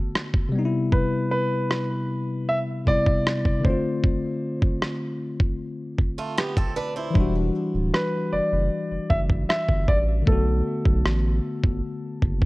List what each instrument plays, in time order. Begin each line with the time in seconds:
Already playing: tine electric piano D3 A3 B3 F#4, grand piano A4
0.15 cross-stick
0.34 kick
0.49 tine electric piano C3 G3
0.55 tine electric piano B3 D#4
0.65 tine electric piano E4
0.92 grand piano B4, kick
1.31 grand piano B4
1.71 cross-stick
2.49 grand piano E5
2.85 tine electric piano C3 G3 B3, grand piano D5, kick
2.90 tine electric piano E4
3.06 kick
3.27 cross-stick
3.45 kick
3.60 tine electric piano D3 A3
3.65 tine electric piano C4, grand piano C5, kick
3.70 tine electric piano F4
4.04 kick
4.62 kick
4.82 cross-stick
5.40 kick
5.98 kick
6.18 steel-string acoustic guitar A3 F4
6.38 steel-string acoustic guitar B3 G4, cross-stick
6.57 steel-string acoustic guitar C4 A4, kick
6.76 steel-string acoustic guitar D4 B4
6.96 steel-string acoustic guitar E4 C5
7.11 tine electric piano E3 G3
7.15 sub bass E1, tine electric piano D4, kick
7.20 tine electric piano F#4
7.74 sub bass D1
7.94 grand piano B4, cross-stick
8.32 sub bass F#1, grand piano D5
8.52 sub bass F#1
8.91 sub bass F#1
9.10 sub bass F#1, grand piano E5, kick
9.30 kick
9.49 grand piano E5, cross-stick
9.69 sub bass G1, kick
9.88 sub bass A1, grand piano D5, kick
10.22 tine electric piano D3 A3
10.27 sub bass B1, tine electric piano B3, grand piano A4, kick
10.32 tine electric piano F#4
10.86 sub bass B1, kick
11.06 sub bass A1, cross-stick
11.64 sub bass G1, kick
12.22 sub bass F#1, kick
12.42 kick